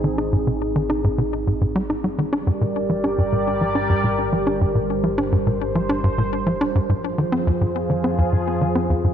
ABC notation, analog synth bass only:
X:1
M:4/4
L:1/16
Q:1/4=105
K:Gphr
V:1 name="Analog synth bass" clef=bass
E, E A,, C, z E, E A,, C, z A,, A,, G, E G, E, | D G,, B,, z F, D G,, B,, z F, D G,, B,, z F, D | G,, B,, z F, D G,, B,, z F, D G,, B,, z F, D G,, | A,, z E, C F,, A,, z E, C F,, A,, z E, C F,, A,, |]